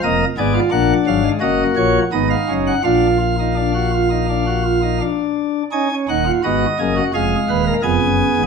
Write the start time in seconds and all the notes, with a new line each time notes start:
0.03 F1 F2 A#3 A#4 D#5
0.38 G#1 G#2 B3 G#4 D5
0.54 F4
0.71 A#1 A#2 A#3 D4 F#5
1.07 G#1 G#2 F#3 F5
1.24 G#3
1.40 F#1 F#2 A#3 F#4 D#5
1.76 A#1 A#2 C#5
2.12 G#1 G#2 B3 D#4 D#5
2.30 F5
2.49 F#1 F#2 C#4
2.67 F#5
2.84 A#1 A#2 D4 F4 F5
3.20 F4
3.39 D#4
3.56 D4
3.74 F#4
3.94 F4
4.10 D#4
4.29 D4
4.47 F#4
4.65 F4
4.82 D#4
5.01 D4
5.72 C#4 D#4 G#5
5.91 C#4
6.09 D#1 D#2 D#4 F#5
6.26 F4
6.44 G#1 G#2 B3 F#4 D#5
6.79 F#1 F#2 A#3 G#4
6.96 F#4
7.14 F1 F2 G#3 G#4 F5
7.49 D#1 D#2 B4
7.67 A#4
7.83 F1 F2 B3 G#4 G#5
8.01 F#1 F#2
8.36 G#1 G#2